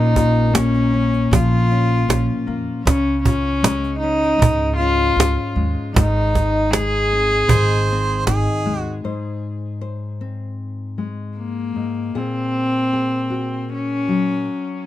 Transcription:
Already playing: A#1 A#2 A#3 C#4 D#4 F4 A#4
0.16 F4, cajon bass
0.54 A#3 C#4, cajon slap
0.74 cajon slap
0.94 C#4
1.14 cajon slap
1.31 A#1 F3 F4, cajon bass
1.71 C#4, cajon slap
2.08 A#1 C#4, cajon slap
2.47 F2 A#3
2.84 C#2 C#3 C#4, cajon bass, cajon slap
3.22 C#4 F4, cajon bass
3.62 G#3, cajon slap
3.84 cajon slap
3.99 D#4
4.03 C#4
4.23 cajon slap
4.39 C#2 G#2, cajon bass
4.76 C#4 F4
4.81 cajon slap
5.16 C#2 C#4, cajon slap
5.56 D#2 G#3
5.94 G#1 G#2 D#4, cajon bass, cajon slap
6.34 D#4, cajon bass, cajon slap
6.72 G#3 G#4, cajon slap
7.13 C4
7.31 cajon slap
7.48 G#1 D#3 C5, cajon bass
7.88 C4, cajon slap
8.27 G#1 D#4 G#4, cajon slap
8.66 D#2 G#3
8.81 F#4
9.04 G#2 C5
9.81 C5
10.21 C4
10.98 G#3
11.37 A#3
11.76 G#2
12.15 A#2 C4 G#4
12.93 G#4
13.30 F#4
13.74 C#4
14.08 F#3

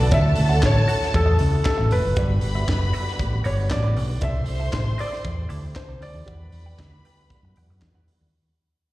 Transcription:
Already playing: D3 A3 B3 F#4 D5
0.00 B1
0.11 D2 D3 A3 C#4 E4 F#4 A4 C#5 E5 A5, kick, closed hi-hat
0.24 muted clean electric guitar stroke
0.35 D2, muted clean electric guitar stroke, open hi-hat
0.49 F#4 C#5 F#5
0.62 A1 C#5, kick, snare, clap, closed hi-hat
0.76 muted clean electric guitar stroke
0.88 F#4 C#5 F#5, open hi-hat
1.00 muted clean electric guitar stroke, snare
1.14 E2 A4, muted clean electric guitar stroke, kick, closed hi-hat
1.26 F#4 C#5 E5
1.39 C#2, muted clean electric guitar stroke, open hi-hat
1.51 muted clean electric guitar stroke
1.65 A4, muted clean electric guitar stroke, kick, snare, clap, closed hi-hat
1.78 A1 F#4 C#5 E5
1.91 F1 B4, open hi-hat
2.05 F#1, muted clean electric guitar stroke
2.16 G1 G3 B3 F#4 G4 B4 D5 B5, kick, closed hi-hat
2.30 muted clean electric guitar stroke
2.41 G1, muted clean electric guitar stroke, open hi-hat
2.55 F#4 B4 E5
2.68 F#1, kick, snare, clap, closed hi-hat
2.81 muted clean electric guitar stroke
2.93 F#4 B4 E5, open hi-hat
3.07 muted clean electric guitar stroke, snare
3.19 A1, kick, closed hi-hat
3.32 muted clean electric guitar stroke
3.44 G1 F#4 B4 C#5 D5, open hi-hat
3.58 muted clean electric guitar stroke
3.70 A1 D5, muted clean electric guitar stroke, kick, snare, clap, closed hi-hat
3.83 F#4 B4 D5
3.96 B1, muted clean electric guitar stroke, open hi-hat
4.09 muted clean electric guitar stroke
4.21 C2 A3 C4 E4 A4 C5 D5 E5 C6, kick, closed hi-hat
4.35 muted clean electric guitar stroke
4.46 C2, muted clean electric guitar stroke, open hi-hat
4.60 E4 A4 E5
4.73 A1, kick, snare, clap, closed hi-hat
4.86 muted clean electric guitar stroke
4.98 E4 A4 D5 E5, open hi-hat
5.12 muted clean electric guitar stroke, snare
5.24 E2, kick, closed hi-hat
5.37 muted clean electric guitar stroke
5.49 D2 E4 A4 D5, open hi-hat
5.63 muted clean electric guitar stroke
5.75 C5, muted clean electric guitar stroke, kick, snare, clap, closed hi-hat
5.89 C2 E4 A4 D5
6.00 D2 D5, open hi-hat
6.14 D#2, muted clean electric guitar stroke
6.26 E2 G3 B3 F#4 G4 B4 D5 F#5 B5, kick, closed hi-hat
6.40 muted clean electric guitar stroke
6.52 E2, muted clean electric guitar stroke, open hi-hat
6.66 G4 D5 G5
6.79 D2, kick, snare, clap, closed hi-hat
6.92 muted clean electric guitar stroke
7.05 G4 D5 G5, open hi-hat
7.18 muted clean electric guitar stroke
7.30 kick, closed hi-hat
7.43 F#2, muted clean electric guitar stroke
7.56 E2 G4 D5 F#5, open hi-hat
7.70 F#2, muted clean electric guitar stroke
7.82 E3, muted clean electric guitar stroke, kick, snare, clap, closed hi-hat
7.95 E2 G4 D5 F#5
8.08 muted clean electric guitar stroke, open hi-hat
8.21 D#2, muted clean electric guitar stroke

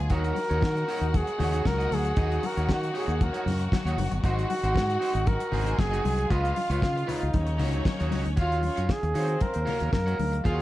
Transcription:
Already playing: G#4 G#5
0.00 D2, muted clean electric guitar stroke
0.10 D#2 D#3 A#3 C#4 D#4 F#4 A#4 C#5 F#5, kick, closed hi-hat
0.24 closed hi-hat
0.35 muted clean electric guitar stroke, open hi-hat, muted conga
0.50 D#2 D#4 F#4 C#5, closed hi-hat
0.61 D#3, muted clean electric guitar stroke, kick, snare, high conga
0.77 muted clean electric guitar stroke, closed hi-hat
0.88 D#4 F#4 C#5, open hi-hat
1.01 D#2, muted clean electric guitar stroke, closed hi-hat
1.14 G#4, muted clean electric guitar stroke, kick, closed hi-hat, muted conga
1.27 muted clean electric guitar stroke, closed hi-hat
1.39 D#2 D#4 F#4 C#5, open hi-hat, muted conga, low conga
1.52 D#4 F#4 C#5, closed hi-hat
1.65 C#2 A#4, muted clean electric guitar stroke, kick, snare, high conga
1.78 D#4 F#4 D#5, closed hi-hat
1.91 D2 G#4, muted clean electric guitar stroke, open hi-hat, high conga
2.05 muted clean electric guitar stroke, closed hi-hat
2.17 D#2 D#4 F#4 D#5, kick, closed hi-hat
2.32 closed hi-hat
2.43 A#4, muted clean electric guitar stroke, open hi-hat, muted conga
2.57 D#2 D#4 F#4 C#5, closed hi-hat
2.69 D#3 F#4, muted clean electric guitar stroke, kick, snare, high conga
2.82 muted clean electric guitar stroke, closed hi-hat
2.94 D#4 F#4 G#4 C#5, open hi-hat
3.08 D#2, muted clean electric guitar stroke, closed hi-hat
3.20 A#4, muted clean electric guitar stroke, kick, closed hi-hat, muted conga
3.33 D#4 F#4 C#5, closed hi-hat
3.46 F#2, muted clean electric guitar stroke, open hi-hat, muted conga, low conga
3.60 muted clean electric guitar stroke, closed hi-hat
3.72 muted clean electric guitar stroke, kick, snare, high conga
3.85 D#2 D#4 F#4 C#5, closed hi-hat
3.98 F#1, muted clean electric guitar stroke, open hi-hat, high conga
4.11 G1, muted clean electric guitar stroke, closed hi-hat
4.24 G#1 G#3 C4 D#4 F#4 C5 F#5, kick, closed hi-hat
4.39 closed hi-hat
4.49 muted clean electric guitar stroke, open hi-hat, muted conga
4.63 G#1 D#4 F#4 C5, closed hi-hat
4.74 G#2, muted clean electric guitar stroke, kick, snare, high conga
4.90 muted clean electric guitar stroke, closed hi-hat
5.00 D#4 F#4 C5, open hi-hat
5.14 G#1, muted clean electric guitar stroke, closed hi-hat
5.26 A#4, muted clean electric guitar stroke, kick, closed hi-hat, muted conga
5.40 muted clean electric guitar stroke, closed hi-hat
5.52 G#1 D#4 F#4 G#4 C5 G#5, open hi-hat, low conga
5.66 D#4 F#4 C5, closed hi-hat
5.79 F#1 G#4, muted clean electric guitar stroke, kick, snare, high conga
5.91 D#4 F#4 D#5, closed hi-hat
6.04 C2, muted clean electric guitar stroke, open hi-hat, high conga
6.17 muted clean electric guitar stroke, closed hi-hat
6.30 C#2 C#3 G#3 B3 F4 B4 D#5 F5, kick, closed hi-hat
6.45 closed hi-hat
6.56 muted clean electric guitar stroke, open hi-hat, muted conga
6.70 C#2 F4 B4 C#5, closed hi-hat
6.82 C#3, muted clean electric guitar stroke, kick, snare, high conga
6.96 muted clean electric guitar stroke, closed hi-hat
7.06 D#4 F4 B4 C#5, open hi-hat, low conga
7.21 C#2, muted clean electric guitar stroke, closed hi-hat
7.33 D#2 F#3 A#3 C#4 D#4 C#5, muted clean electric guitar stroke, kick, closed hi-hat, muted conga
7.47 muted clean electric guitar stroke, closed hi-hat
7.58 C#2 D#4 F#4 C#5, open hi-hat, low conga
7.73 D#4 F#4 C#5, closed hi-hat
7.85 muted clean electric guitar stroke, kick, snare, high conga
7.99 D#2 D#4 F#4 C#5, closed hi-hat
8.11 C#2 D#4 F#4 C#5, open hi-hat, high conga
8.25 D2, muted clean electric guitar stroke, closed hi-hat
8.36 D#2 C#3 D#3 F#3 F4 F#4 C#5 F5, kick, closed hi-hat
8.42 F4
8.52 closed hi-hat
8.62 C#4 C#5, muted clean electric guitar stroke, open hi-hat, muted conga
8.76 F#2 F#4 C#5 F5, closed hi-hat
8.88 G#4, muted clean electric guitar stroke, kick, snare, high conga
9.03 D#2, muted clean electric guitar stroke, closed hi-hat
9.14 D#3 C4 F#4 C5 C#5 F5, open hi-hat
9.28 muted clean electric guitar stroke, closed hi-hat
9.40 A#4, muted clean electric guitar stroke, kick, closed hi-hat, muted conga
9.53 D#2, muted clean electric guitar stroke, closed hi-hat
9.65 F#4 C#5 F5, open hi-hat, muted conga, low conga
9.70 A#3 A#4
9.78 D#2 F#4 C#5 F5, closed hi-hat
9.93 F#2 A#4, kick, snare, high conga
10.06 F#4 C#5 F#5, closed hi-hat
10.18 D2, muted clean electric guitar stroke, open hi-hat, high conga
10.32 muted clean electric guitar stroke, closed hi-hat
10.44 D#2 F4 F#4 G#4 C#5 F5 F#5, kick, closed hi-hat

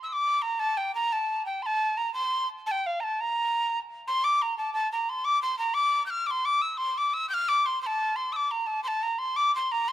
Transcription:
0.03 E6
0.08 E6
0.13 D6
0.42 A#5
0.59 A5
0.77 G5
0.95 A#5
1.13 A5
1.46 G5
1.62 A5 C6
1.97 A#5
2.14 C6
2.67 A5
2.71 G5
2.86 F5
3.00 A5 A#5
3.21 A#5
4.08 C6
4.24 D6
4.42 A#5
4.58 A5
4.74 A5
4.92 A#5
5.09 C6
5.25 D6
5.42 C6
5.59 A#5
5.74 D6
6.06 G6
6.10 F6
6.27 D6
6.31 C6
6.45 D6
6.62 E6
6.78 C6
6.98 D6
7.14 E6
7.29 G6
7.34 F6
7.49 D6
7.66 C6
7.82 C6
7.86 A5
8.16 C6
8.33 D6 E6
8.51 A#5
8.67 A5
8.83 C6
8.88 A5
9.03 A#5
9.19 C6
9.36 D6
9.55 C6
9.72 A#5
9.88 C6

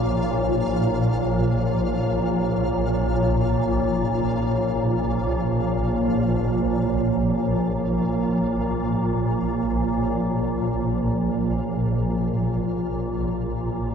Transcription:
Already playing: A#1 A#2 A#3 D#4 F4 A#4 C#5 F5

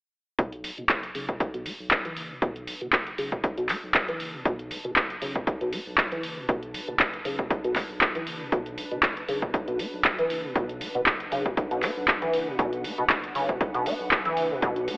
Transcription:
0.39 B1 B2 D4, kick, closed hi-hat
0.52 closed hi-hat
0.64 B3 B4, open hi-hat
0.78 F#1 B2, closed hi-hat
0.89 B2, kick, clap, closed hi-hat
1.03 closed hi-hat
1.15 B1 C#3, open hi-hat
1.29 B2, kick, closed hi-hat
1.40 B1, kick, closed hi-hat
1.54 B2, closed hi-hat
1.66 B3, open hi-hat
1.80 B1
1.91 A5, kick, clap, closed hi-hat
2.05 E3, closed hi-hat
2.17 F#1, open hi-hat
2.30 B2
2.42 B1 B2, kick, closed hi-hat
2.56 closed hi-hat
2.67 B3, open hi-hat
2.81 F#1 B2, closed hi-hat
2.93 B2, kick, clap, closed hi-hat
3.07 closed hi-hat
3.18 B1 C#3, open hi-hat
3.32 B2, kick, closed hi-hat
3.44 B1, kick, closed hi-hat
3.57 B2, closed hi-hat
3.69 B3, clap, open hi-hat
3.83 B1
3.94 kick, clap, closed hi-hat
4.08 E3, closed hi-hat
4.20 F#1, open hi-hat
4.34 B2
4.45 B1 B2, kick, closed hi-hat
4.59 closed hi-hat
4.71 B3, open hi-hat
4.85 F#1 B2, closed hi-hat
4.96 B2, kick, clap, closed hi-hat
5.10 closed hi-hat
5.22 B1 C#3, open hi-hat
5.35 B2, kick
5.47 B1, kick, closed hi-hat
5.61 B2, closed hi-hat
5.73 B3, open hi-hat
5.86 B1
5.98 kick, clap, closed hi-hat
6.12 E3, closed hi-hat
6.23 F#1, open hi-hat
6.37 B2
6.49 B1 B2, kick, closed hi-hat
6.63 closed hi-hat
6.74 B3, open hi-hat
6.88 F#1 B2, closed hi-hat
7.00 B2, kick, clap, closed hi-hat
7.13 closed hi-hat
7.25 B1 C#3, open hi-hat
7.39 B2, kick, closed hi-hat
7.50 B1, kick, closed hi-hat
7.64 B2, closed hi-hat
7.76 B3, kick, clap, open hi-hat
7.90 B1
8.01 kick, clap, closed hi-hat
8.15 E3, closed hi-hat
8.27 F#1, open hi-hat
8.41 B2
8.52 B1 B2, kick, closed hi-hat
8.66 closed hi-hat
8.78 B3, open hi-hat
8.91 F#1 B2, closed hi-hat
9.03 B2, kick, clap, closed hi-hat
9.17 closed hi-hat
9.28 B1 C#3, open hi-hat
9.42 B2, kick
9.54 B1, kick, closed hi-hat
9.68 B2, closed hi-hat
9.79 B3, open hi-hat
9.93 B1
10.05 F#5, kick, clap, closed hi-hat
10.18 E3, closed hi-hat
10.30 F#1, open hi-hat
10.44 B2
10.55 B1 B2, kick, closed hi-hat
10.69 closed hi-hat
10.81 B3, open hi-hat
10.95 F#1 B2, closed hi-hat
11.06 B2, kick, clap, closed hi-hat
11.20 closed hi-hat
11.32 B1 C#3, open hi-hat
11.46 B2, kick, closed hi-hat
11.57 B1, kick, closed hi-hat
11.71 B2, closed hi-hat
11.83 B3, clap, open hi-hat
11.97 B1
12.08 kick, clap, closed hi-hat
12.22 E3, closed hi-hat
12.34 F#1, open hi-hat
12.47 B2
12.59 B1 B2, kick, closed hi-hat
12.73 closed hi-hat
12.84 B3, open hi-hat
12.98 F#1 B2, closed hi-hat
13.10 B2, kick, clap, closed hi-hat
13.24 closed hi-hat
13.35 B1 C#3, open hi-hat
13.49 B2, kick, closed hi-hat
13.61 B1, kick, closed hi-hat
13.74 B2, closed hi-hat
13.86 B3, open hi-hat
14.00 B1
14.11 kick, clap, closed hi-hat
14.25 E3, closed hi-hat
14.37 F#1, open hi-hat
14.51 B2
14.62 B1 B2, kick, closed hi-hat
14.76 closed hi-hat
14.88 B3, open hi-hat

